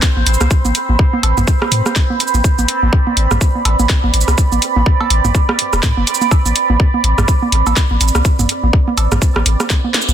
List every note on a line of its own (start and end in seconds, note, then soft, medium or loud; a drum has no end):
0.00 10.13 C4 medium
0.00 2.47 C5 medium
0.00 10.13 B5 medium
0.00 kick loud
0.00 snare loud
0.00 shaker medium
0.17 0.24 A1 loud
0.17 high conga soft
0.27 0.37 A1 medium
0.27 open hi-hat medium
0.27 shaker soft
0.34 shaker soft
0.41 0.48 C2 loud
0.41 cross-stick medium
0.41 high conga medium
0.41 shaker soft
0.51 kick loud
0.51 shaker soft
0.65 0.72 A1 loud
0.65 high conga medium
0.65 shaker soft
0.75 open hi-hat loud
0.75 shaker soft
0.89 0.96 A1 medium
0.89 high conga soft
0.99 kick loud
1.13 high conga medium
1.23 1.33 A1 medium
1.23 open hi-hat medium
1.23 cowbell medium
1.38 1.45 A1 medium
1.38 mid tom loud
1.38 high conga medium
1.38 shaker soft
1.47 kick loud
1.47 shaker soft
1.62 cross-stick medium
1.62 high conga soft
1.72 1.82 A2 loud
1.72 open hi-hat medium
1.72 shaker soft
1.86 cross-stick medium
1.86 high conga medium
1.86 shaker soft
1.96 kick loud
1.96 snare loud
1.96 shaker medium
2.10 high conga medium
2.20 open hi-hat medium
2.20 shaker soft
2.27 shaker soft
2.34 2.41 A1 medium
2.34 high conga soft
2.34 shaker soft
2.44 10.13 D5 medium
2.44 kick loud
2.44 shaker medium
2.59 2.66 A1 loud
2.59 high conga medium
2.59 shaker soft
2.68 open hi-hat loud
2.68 shaker soft
2.83 2.90 A1 medium
2.83 high conga soft
2.93 kick loud
3.07 high conga medium
3.17 3.27 A1 medium
3.17 open hi-hat medium
3.31 3.38 A1 medium
3.31 cross-stick medium
3.31 mid tom loud
3.31 high conga medium
3.31 shaker soft
3.41 kick loud
3.41 shaker soft
3.55 high conga soft
3.65 3.75 A1 loud
3.65 open hi-hat medium
3.65 cowbell medium
3.79 3.87 A1 medium
3.79 high conga medium
3.79 shaker soft
3.89 kick loud
3.89 snare loud
3.89 shaker medium
4.04 4.11 A1 loud
4.04 high conga medium
4.14 4.24 A1 medium
4.14 open hi-hat loud
4.14 shaker soft
4.21 shaker soft
4.28 4.35 C2 loud
4.28 cross-stick medium
4.28 high conga soft
4.28 shaker soft
4.38 kick loud
4.38 shaker medium
4.52 4.59 A1 loud
4.52 high conga medium
4.52 shaker soft
4.62 open hi-hat loud
4.62 shaker soft
4.76 4.83 A1 medium
4.76 high conga medium
4.86 kick loud
5.00 cowbell medium
5.00 high conga soft
5.10 5.20 A1 medium
5.10 open hi-hat medium
5.25 5.32 A1 medium
5.25 mid tom medium
5.25 high conga medium
5.25 shaker soft
5.35 kick loud
5.35 shaker medium
5.49 cross-stick medium
5.49 high conga medium
5.59 open hi-hat medium
5.73 5.80 E1 loud
5.73 cross-stick medium
5.73 high conga soft
5.73 shaker soft
5.83 5.93 A2 loud
5.83 kick loud
5.83 snare loud
5.83 shaker medium
5.97 6.04 G1 medium
5.97 high conga medium
6.07 open hi-hat medium
6.07 shaker soft
6.14 shaker medium
6.21 high conga medium
6.21 shaker soft
6.31 kick loud
6.31 cowbell medium
6.31 shaker medium
6.46 6.53 A1 loud
6.46 high conga soft
6.46 shaker soft
6.56 open hi-hat medium
6.56 shaker soft
6.70 6.77 A1 medium
6.70 high conga medium
6.80 kick loud
6.94 high conga medium
7.04 7.14 A1 medium
7.04 open hi-hat medium
7.18 7.25 A1 loud
7.18 cross-stick medium
7.18 mid tom loud
7.18 high conga soft
7.18 shaker soft
7.28 kick loud
7.28 shaker medium
7.42 high conga medium
7.52 7.62 A1 loud
7.52 open hi-hat medium
7.67 7.74 A1 medium
7.67 cowbell medium
7.67 high conga medium
7.67 shaker soft
7.76 kick loud
7.76 snare loud
7.76 shaker medium
7.91 7.98 A1 loud
7.91 high conga soft
8.01 8.11 A1 medium
8.01 open hi-hat medium
8.01 shaker soft
8.08 shaker medium
8.15 8.22 C2 loud
8.15 cross-stick medium
8.15 high conga medium
8.15 shaker soft
8.25 kick loud
8.25 shaker medium
8.39 8.46 A1 loud
8.39 mid tom medium
8.39 high conga medium
8.39 shaker soft
8.49 open hi-hat medium
8.49 shaker soft
8.63 8.70 A1 medium
8.63 high conga soft
8.73 kick loud
8.88 high conga medium
8.97 9.08 A1 medium
8.97 open hi-hat medium
8.97 cowbell medium
8.97 shaker soft
9.12 9.19 A1 medium
9.12 cross-stick medium
9.12 mid tom loud
9.12 high conga medium
9.12 shaker soft
9.22 kick loud
9.22 shaker medium
9.36 9.43 A1 loud
9.36 cross-stick medium
9.36 high conga soft
9.46 9.56 A1 medium
9.46 open hi-hat medium
9.46 shaker soft
9.60 cross-stick medium
9.60 high conga medium
9.60 shaker soft
9.70 kick loud
9.70 snare loud
9.70 shaker medium
9.84 high conga medium
9.94 snare loud
9.94 open hi-hat medium
9.94 shaker soft
10.01 shaker medium
10.09 10.13 A1 loud
10.09 high conga soft
10.09 shaker soft